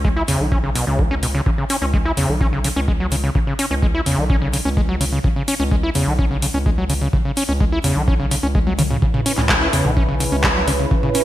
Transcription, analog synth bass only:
Already playing: C#2
0.28 E2
0.40 B1
0.87 C#2
1.82 C#2
2.17 E2
2.29 B1
2.76 C#2
3.71 C#2
4.06 E2
4.18 B1
4.65 C#2
5.60 C#2
5.95 E2
6.07 B1
6.54 C#2
7.49 C#2
7.84 E2
7.96 B1
8.43 C#2
9.38 C#2
9.73 E2
9.85 B1
10.32 C#2

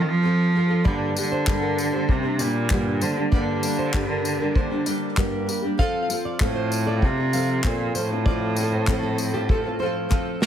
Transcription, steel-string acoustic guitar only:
0.85 D5
1.32 C5
1.62 A#4
1.93 C5
2.39 D5
3.02 C5
3.32 D5
3.79 C5
4.10 A#4
4.40 A#4
4.55 C5
4.86 D5
5.17 A#4
5.79 F5
6.25 D5
6.56 C5
6.87 D5
7.34 F5
7.95 C5
8.26 D5
8.72 C5
9.03 A4
9.34 G4
9.50 A4
9.80 C5
10.12 A4

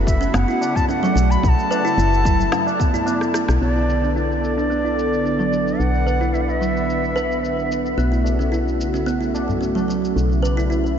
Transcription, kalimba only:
0.21 C#4
0.34 B3
0.48 E4
0.89 C#4
1.03 F#3
1.16 F#3
1.71 B4
1.85 E4
1.98 E4
2.25 F#3
2.80 B3
2.94 E4
3.07 B3
3.34 E4
3.62 B3
3.76 E4
4.03 D4
4.16 E4
4.58 D4
4.70 B3
4.84 E4
5.25 D4
5.39 F#3
5.52 F#3
6.06 B4
6.21 E4
6.34 E4
6.61 F#3
7.16 B4
7.98 B3
8.12 E4
8.39 C#4
8.52 E4
8.94 C#4
9.06 B3
9.21 E4
9.61 C#4
9.75 F#3
9.88 F#3
10.42 B4
10.57 E4
10.70 E4

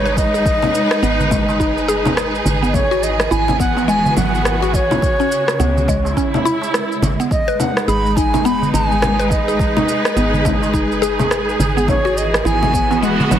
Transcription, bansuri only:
Already playing: C#5
0.17 D#5
2.69 D#5
2.74 C#5
3.03 D#5
3.31 G#5
3.60 F#5
3.88 G#5
4.17 F#5
4.74 C#5
7.31 D#5
7.60 F#5
7.88 B5
8.11 B5
8.16 G#5
8.45 B5
8.73 G#5
9.30 D#5
11.89 C#5
12.17 D#5
12.46 G#5
13.02 F#5

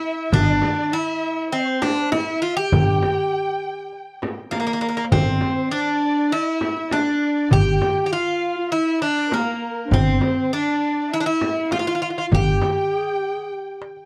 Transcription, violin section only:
Already playing: E5
0.34 D#5
0.48 D5
0.92 E5
1.52 C5
2.12 E5
2.58 G5
4.52 A#4
5.13 C5
5.73 D5
6.32 D#5
6.46 E5
6.92 D5
7.52 G5
8.12 F5
8.72 E5
9.02 D5
9.32 A#4
9.91 C5
10.51 D5
11.12 E5
11.26 E5
11.73 F5
12.32 G5

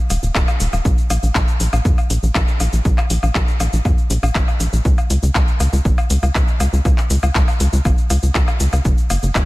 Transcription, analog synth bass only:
0.10 D#1
0.23 D#1
0.35 D#1
0.60 D#1
0.73 D#1
0.85 A#1
1.10 A#1
1.23 A#1
1.35 A#1
1.60 A#1
1.73 A#1
1.85 F2
2.10 A#1
2.23 A#1
2.35 A#1
2.60 A#1
2.73 A#1
2.85 A#1
3.10 A#1
3.23 A#1
3.35 A#1
3.60 A#1
3.73 A#1
3.85 F2
4.10 A#1
4.23 A#1
4.35 G#1
4.60 A#1
4.73 A#1
4.85 C#2
5.10 C#2
5.23 C#2
5.35 C#2
5.60 C#2
5.73 C#2
5.85 G#1
6.10 C#2
6.23 C#2
6.35 C#2
6.60 C#2
6.73 C#2
6.85 C#2
7.10 C#2
7.23 C#2
7.35 C#2
7.60 C#2
7.73 C#2
7.85 G#1
8.10 C#2
8.23 C#2
8.35 C#2
8.60 C#2
8.73 C#2
8.85 F#1
9.10 F#1
9.23 F#1
9.35 F#1

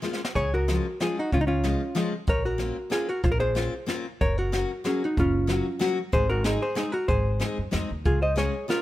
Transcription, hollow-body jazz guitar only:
0.35 G#4 C#5
0.54 F#4 A#4
1.02 F4 G#4
1.19 D#4 F#4
1.33 C#4 F4
1.41 D#4
1.47 C#4 F4
2.29 A#4 C#5
2.45 F#4 A#4
2.92 F4 G#4
3.09 F#4 A#4
3.24 F4 C5
3.32 A#4
3.40 G#4 C5
4.21 A#4 C#5
4.38 F#4 A#4
4.86 C#4 G#4
5.04 D#4 F#4
5.19 C#4 F4
6.13 G#4 C5
6.30 F#4 A#4
6.44 D#4 G#4
6.62 G#4 C5
6.77 D#4 G#4
6.92 F#4 A#4
7.08 G#4 C5
8.06 F4 G#4
8.22 C5 D#5
8.37 G#4 C#5
8.70 F4 A#4

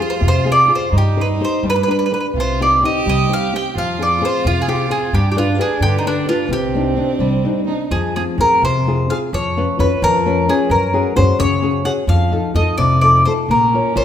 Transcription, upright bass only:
0.21 F2
0.92 G2
1.63 G2
2.34 C2
3.06 C2
3.76 F2
4.45 F2
5.13 G2
5.80 G2
6.49 C2
7.19 C2
7.91 F2
8.38 F2
8.62 F2
9.33 F2
9.79 F2
10.02 F2
10.70 F#2
11.17 F#2
11.40 F#2
12.07 F2
12.54 F2
12.78 F2
13.48 A#1
13.96 A#1

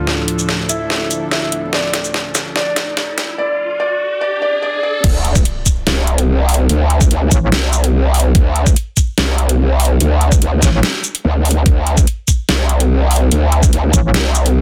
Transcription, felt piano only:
Already playing: F4
0.69 E4
1.31 E4
1.73 D5
2.56 D5
3.38 D5
3.80 D5
4.21 D5
4.42 D5
4.62 D5
4.83 D5

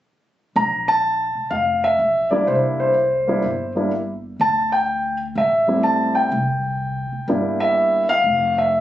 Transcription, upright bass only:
0.56 A#1
1.35 muted upright bass stroke
1.51 F1
1.99 A#1
2.47 C2
3.42 G1
4.40 D2
5.35 A1
6.32 C2
7.12 muted upright bass stroke
7.28 G1
8.24 F1

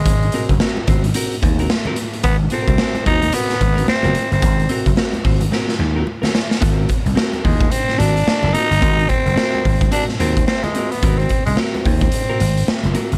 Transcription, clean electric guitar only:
0.34 C4 F#4 A#4
0.60 C4 F#4 A#4
0.77 muted clean electric guitar stroke
0.87 C4 F#4 C5
1.03 muted clean electric guitar stroke
1.15 C4 F#4 A#4
1.43 muted clean electric guitar stroke
1.60 C4 F#4 A#4
1.71 muted clean electric guitar stroke
1.87 C4 F#4 A#4
1.98 muted clean electric guitar stroke
2.14 muted clean electric guitar stroke
2.52 C4 F#4 A#4
2.79 C4 F#4 A#4
2.96 muted clean electric guitar stroke
3.06 C4 F#4 C5
3.22 muted clean electric guitar stroke
3.33 C4 F#4 A#4
3.60 muted clean electric guitar stroke
3.76 C4 F#4 A#4
4.04 C4 F#4 A#4
4.15 muted clean electric guitar stroke
4.32 muted clean electric guitar stroke
4.70 C4 F#4 A#4
4.97 C4 F#4 A#4
5.14 muted clean electric guitar stroke
5.24 C4 F#4 C5
5.41 muted clean electric guitar stroke
5.52 C4 F#4 A#4
5.80 muted clean electric guitar stroke
5.96 C4 F#4 A#4
6.07 muted clean electric guitar stroke
6.22 C4 F#4 A#4
6.33 muted clean electric guitar stroke
6.50 muted clean electric guitar stroke
6.61 B3 F4 A4
6.72 C4 F#4 A#4
7.05 muted clean electric guitar stroke
7.15 C4 F#4 A#4
7.43 muted clean electric guitar stroke
7.60 muted clean electric guitar stroke
7.88 muted clean electric guitar stroke
7.98 C4 F#4 A#4
8.16 muted clean electric guitar stroke
8.27 muted clean electric guitar stroke
8.54 C4 F#4 A#4
8.70 muted clean electric guitar stroke
8.81 C4 F#4 A#4
9.26 muted clean electric guitar stroke
9.36 C4 F#4 A#4
9.64 muted clean electric guitar stroke
9.81 muted clean electric guitar stroke
9.91 C4 F#4 A#4
10.09 muted clean electric guitar stroke
10.19 C4 F#4 A#4
10.37 muted clean electric guitar stroke
10.48 muted clean electric guitar stroke
10.75 C4 F#4 A#4
10.93 muted clean electric guitar stroke
11.03 C4 F#4 A#4
11.48 muted clean electric guitar stroke
11.58 C4 F#4 A#4
11.86 muted clean electric guitar stroke
12.03 muted clean electric guitar stroke
12.13 muted clean electric guitar stroke
12.29 C4 F#4 A#4
12.41 muted clean electric guitar stroke
12.56 muted clean electric guitar stroke
12.67 muted clean electric guitar stroke
12.94 C4 F#4 A#4
13.12 muted clean electric guitar stroke

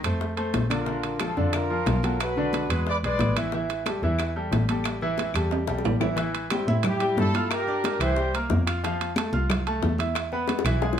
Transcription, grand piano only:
0.05 A3 A4 C5
0.37 A3 A4 C5
0.70 D3 D4 D5
0.87 D3 D4 D5
1.21 F3 F4 A4
1.37 D3 D4 D5
1.70 F3 F4 A#4
2.04 F#3 F#4 A4
2.37 D3 D4 D5
2.70 G#3 G#4 B4
3.04 G#3 G#4 B4
3.36 E3 E4 E5
3.54 E3 E4 E5
3.86 G3 G4 A4
4.03 E3 E4 E5
4.36 G3 G4 A4
4.70 G3 G4 A4
5.02 E3 E4 E5
5.35 G3 G4 A4
5.68 G3 G4 A4
6.00 E3 E4 E5
6.16 E3 E4 E5
6.50 G3 G4 G5
6.68 E4 E5 E6
7.01 G3 G4 G5
7.35 F4 F5 F6
7.67 D4 D5 D6
8.00 E3 E4 E5
8.17 G3 G4 G5
8.34 A#3 A#4 A#5
8.67 F4 F5 F6
8.84 F3 F4 F5
9.18 A3 A4 A5
9.33 F4 F5 F6
9.67 A3 A4 A5
9.99 E4 E5 E6
10.33 B3 B4 B5
10.65 E3 E4 E5
10.81 G#3 G#4 G#5

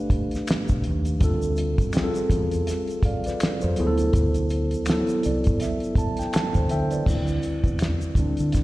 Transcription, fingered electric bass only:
0.71 B1
0.87 D#2
1.22 D2
2.31 E2
3.64 F2
3.80 D2
4.15 D2
5.26 C2
6.36 muted fingered electric bass stroke
6.56 D2
6.72 D3
7.08 D2
7.65 E2
8.16 D2
8.40 D3
8.56 D2

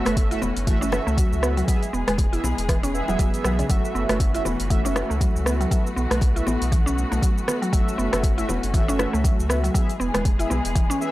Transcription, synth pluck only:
0.06 A3
0.31 E4
0.42 B3
0.67 E3
0.81 C#4
1.07 A3
1.17 F#3
1.43 B3
1.57 F#3
1.68 F#3
1.93 B3
2.08 G#3
2.33 E4
2.44 B3
2.69 E3
2.83 C#4
3.09 F#3
3.19 F#3
3.45 F#3
3.59 C#3
3.70 F#3
3.95 B3
4.09 A3
4.35 E4
4.45 B3
4.70 E3
4.85 C#4
5.10 A3
5.21 F#3
5.46 B3
5.60 F#3
5.71 F#3
5.96 B3
6.11 A3
6.36 E4
6.46 B3
6.72 E3
6.86 C#4
7.12 A3
7.22 F#3
7.48 B3
7.62 F#3
7.73 F#3
7.98 B3
8.13 A3
8.38 E4
8.49 B3
8.74 E3
8.88 C#4
9.13 A3
9.24 F#3
9.49 B3
9.64 F#3
9.74 F#3
10.00 B3
10.14 G#3
10.39 E4
10.50 B3
10.75 E3
10.90 C#4

